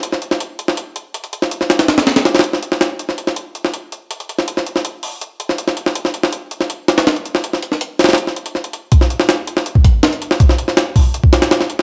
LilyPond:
\new DrumStaff \with { instrumentName = "Drums" } \drummode { \time 4/4 \tempo 4 = 162 hh16 sn16 hh16 sn16 hh8 hh16 sn16 hh8 hh8 hh16 hh16 hh16 sn16 | hh16 sn16 <hh sn>16 <hh sn>16 <hh sn>16 <hh sn>16 <hh sn>16 <hh sn>16 <hh sn>16 <hh sn>32 <hh sn>32 hh16 sn16 hh16 sn16 <hh sn>8 | hh16 sn16 hh16 sn16 hh8 hh16 sn16 hh8 hh8 hh16 hh16 hh16 sn16 | hh16 sn16 hh16 sn16 hh8 hho8 hh8 hh16 sn16 hh16 sn16 hh16 sn16 |
hh16 sn16 hh16 sn16 hh8 hh16 sn16 hh8 <hh sn>16 <hh sn>16 <hh sn>16 hh16 hh16 sn16 | hh16 sn16 hh16 sn16 hh8 <hh sn>32 <hh sn>32 <hh sn>32 <hh sn>32 hh16 sn16 hh16 hh16 sn16 hh16 hh8 | <hh bd>16 sn16 hh16 sn16 <hh sn>8 hh16 sn16 hh16 bd16 <hh bd>8 <hh sn>16 hh16 hh16 sn16 | <hh bd>16 sn16 hh16 sn16 <hh sn>8 <hho bd>8 hh16 bd16 <hh sn>16 <hh sn>16 <hh sn>16 sn16 hh8 | }